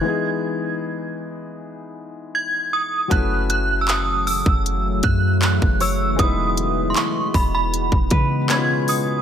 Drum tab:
HH |----------------|x-x-x-o-x-x-x-o-|x-x-x-o-x-x-x-o-|
CP |----------------|----x-------x---|----x-------x---|
BD |----------------|o------o--o--o--|o-----o--oo-----|